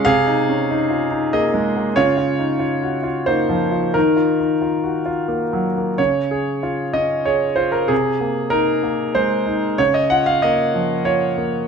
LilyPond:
\new Staff \with { instrumentName = "Grand piano" } { \time 3/4 \key des \major \tempo 4 = 94 << { <aes' f''>2 <aes' ees''>4 | <f' des''>2 <ees' c''>4 | <ees' bes'>2~ <ees' bes'>8 r8 | des''4. ees''8 des''8 c''16 bes'16 |
aes'4 bes'4 c''4 | des''16 ees''16 ges''16 f''16 ees''4 des''4 | } \\ { \tuplet 3/2 { c8 ees'8 des'8 ees'8 f'8 ees'8 bes8 aes8 bes8 } | \tuplet 3/2 { des8 f'8 ees'8 f'8 ges'8 f'8 bes8 f8 f'8 } | \tuplet 3/2 { ees8 f'8 ees'8 f'8 ges'8 f'8 bes8 ges8 bes8 } | des8 aes'8 f'8 des'8 aes'8 f'8 |
c8 bes8 ees'8 bes8 aes8 ees'8 | des8 f'8 bes8 f8 f'8 bes8 | } >> }